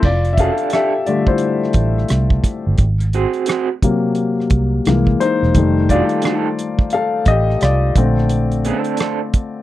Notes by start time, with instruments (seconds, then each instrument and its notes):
0.03 fingered electric bass F1, grand piano F4 D5, kick, crash
0.25 closed hi-hat
0.33 grand piano E5
0.37 clean electric guitar C#4 F#4 G#4, grand piano A4 F5, kick, closed hi-hat
0.52 clean electric guitar D4 G4 A4
0.58 closed hi-hat
0.70 clean electric guitar D4, grand piano E5, cross-stick, closed hi-hat
0.74 clean electric guitar G4 A4, grand piano G4
1.06 grand piano D3 G3 A3 F4 D5, closed hi-hat
1.27 grand piano E4 C5, kick
1.38 closed hi-hat
1.64 cross-stick
1.73 fingered electric bass A1, kick, closed hi-hat
1.98 cross-stick
2.09 fingered electric bass C2, cross-stick, closed hi-hat
2.30 kick
2.44 kick, cross-stick, closed hi-hat
2.67 fingered electric bass G1
2.78 fingered electric bass G#1, kick, closed hi-hat
3.00 closed hi-hat
3.13 clean electric guitar C4 F#4 G#4, closed hi-hat
3.33 closed hi-hat
3.46 clean electric guitar C4 F#4 G#4, cross-stick, closed hi-hat
3.82 grand piano C3 F#3 A#3, kick, closed hi-hat
4.15 closed hi-hat
4.40 cross-stick
4.50 fingered electric bass C2, kick, closed hi-hat
4.85 fingered electric bass C2, grand piano E3 G#3 A#3, cross-stick, closed hi-hat
5.07 kick
5.20 grand piano D#4 C5, cross-stick, closed hi-hat
5.42 fingered electric bass E1, cross-stick
5.54 fingered electric bass F1, grand piano D#3 G3 A3, kick, closed hi-hat
5.89 clean electric guitar D4 F#4 G#4, grand piano F4 D5, kick, closed hi-hat
6.03 clean electric guitar D#4 G4 A4
6.09 closed hi-hat
6.22 clean electric guitar D#4 G4, cross-stick, closed hi-hat
6.26 clean electric guitar A4
6.59 closed hi-hat
6.79 kick
6.90 grand piano F5, closed hi-hat
6.94 grand piano A4
7.26 fingered electric bass A1, grand piano G4 D#5, kick, closed hi-hat
7.50 cross-stick
7.61 fingered electric bass C2, grand piano F4 D5, cross-stick, closed hi-hat
7.96 fingered electric bass A#1, grand piano D3 A3 C4, kick, closed hi-hat
8.18 cross-stick
8.29 closed hi-hat
8.52 closed hi-hat
8.65 clean electric guitar B3 C#4 G#4, closed hi-hat
8.78 clean electric guitar C4 D4 A4
8.84 closed hi-hat
8.97 clean electric guitar C4 D4 A4, cross-stick, closed hi-hat
9.34 kick, closed hi-hat